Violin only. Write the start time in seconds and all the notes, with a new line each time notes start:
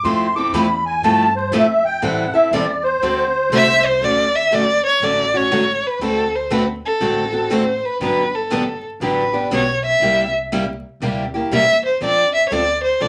3.55 E5
3.85 C5
4.04 D5
4.35 E5
4.54 D5
4.86 C#5
5.04 D5
5.36 C#5
5.86 B4
6.05 A4
6.35 C5
6.52 B4
6.85 A4
7.53 C5
7.85 B4
8.03 B4
8.34 A4
9.02 B4
9.54 C#5
9.85 E5
11.54 E5
11.85 C5
12.04 D5
12.35 E5
12.48 C#5
12.52 D5
12.83 C5
13.01 D5